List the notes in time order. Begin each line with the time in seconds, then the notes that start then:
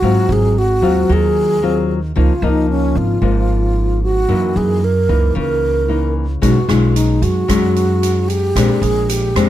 Already playing: F#4
0.02 G#1 G#2 F#3 C4 F4
0.29 G#1 G#4
0.58 F#4
0.82 D#2 F#3 C4 F4
1.09 D#2 D#3 G#4
1.63 F#3 C4 F4
2.16 C#2 C#3 F3 A#3 D#4 F4
2.42 C#2 F3 A#3 D#4
2.70 C#4
2.95 G#1 F4
3.22 G#1 G#2 F3 A#3 D#4
4.03 F#4
4.29 F#2 E3 A#3 D#4
4.56 F#2 G#4
4.84 A#4
5.09 C#2 E3 A#3 D#4
5.35 C#2 C#3 A#4
5.88 E3 A#3 D#4
6.42 B1 B2 G#3 C#4 D#4 F#4, kick, closed hi-hat
6.68 B1 G#3 C#4 D#4 F4, cross-stick, closed hi-hat
6.96 D#4, closed hi-hat
7.22 F#2 F#4, closed hi-hat
7.48 F#2 F#3 G#3 C#4 D#4, kick, cross-stick, closed hi-hat
7.76 closed hi-hat
8.03 closed hi-hat
8.28 G4, closed hi-hat
8.56 A#1 A#2 G#3 C4 D4, kick, cross-stick, closed hi-hat
8.82 A#1 G#4, closed hi-hat
9.09 G4, closed hi-hat
9.35 F2 G#3 C4 D4, cross-stick, closed hi-hat